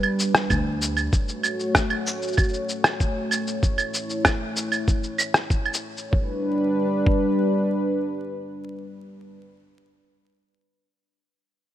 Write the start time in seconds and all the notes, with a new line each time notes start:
Already playing: G3 D4 B4
0.03 claves
0.20 shaker
0.34 cross-stick, shaker
0.50 D2, kick, claves, shaker
0.82 shaker
0.97 claves, shaker
1.12 A3 F#4 C#5, kick, shaker
1.29 shaker
1.43 claves, shaker
1.60 shaker
1.75 kick, cross-stick, shaker
1.90 claves
2.07 shaker
2.22 shaker
2.28 shaker
2.33 shaker
2.37 kick, claves, shaker
2.49 shaker
2.54 shaker
2.69 shaker
2.84 cross-stick, claves, shaker
3.00 kick, shaker
3.31 claves, shaker
3.47 shaker
3.62 E4, kick, shaker
3.78 claves, shaker
3.94 shaker
4.10 shaker
4.25 kick, cross-stick, claves, shaker
4.57 shaker
4.72 claves, shaker
4.88 kick, shaker
5.04 shaker
5.18 claves, shaker
5.34 cross-stick, shaker
5.50 kick, shaker
5.65 claves
5.74 shaker
5.97 shaker
6.12 G3 D4 B4, kick
7.07 kick